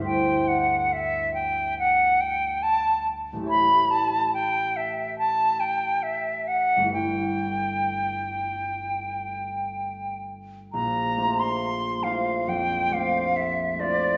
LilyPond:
<<
  \new Staff \with { instrumentName = "Flute" } { \time 4/4 \key g \lydian \tempo 4 = 69 g''8 fis''8 e''8 g''8 fis''8 g''8 a''8 r8 | b''8 a''8 g''8 e''8 a''8 g''8 e''8 fis''8 | g''2.~ g''8 r8 | \key bes \lydian bes''8. c'''8. f''8 g''8 f''8 e''8 d''8 | }
  \new Staff \with { instrumentName = "Harp" } { \time 4/4 \key g \lydian << { <d, g a e' g' c''>1 | <a,, a e' g' cis''>1 | <g,, a e' g' b'>1~ | \key bes \lydian <g,, a e' g' b'>1 | } \\ { r1 | r1 | r1 | bes,,8 <a d' f' c''>4 <a d' f' c''>8 f,8 <a d' f' c''>4 <a d' f' c''>8 | } >> }
>>